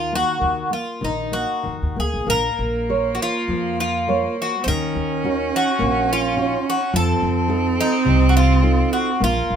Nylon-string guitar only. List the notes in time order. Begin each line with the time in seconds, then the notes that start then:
Already playing: D#3
0.12 A#3
0.41 D#3
0.70 A#3
1.01 D#3
1.32 A#3
1.63 D#3
1.96 A#3
2.26 A#3
2.89 A#4 C5 C#5
3.49 F3
4.08 A#4 C5 C#5
4.68 D#3
5.24 C#4 D#4 F#4
5.79 A#3
6.36 C#4 D#4 F#4
6.94 F3
7.48 D#4 F4 A4
8.05 C3
8.62 D#4 F4 A4
9.20 A#3